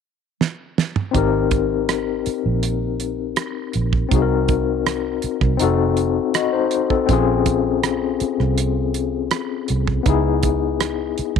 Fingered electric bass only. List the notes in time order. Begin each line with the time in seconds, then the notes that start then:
1.15 G#1
2.27 muted fingered electric bass stroke
2.46 A#1
3.75 A#1
4.12 C2
5.24 muted fingered electric bass stroke
5.42 C2
5.61 F1
7.09 A#1
8.21 muted fingered electric bass stroke
8.40 C2
9.70 C2
10.06 C#2
11.19 muted fingered electric bass stroke
11.37 C#2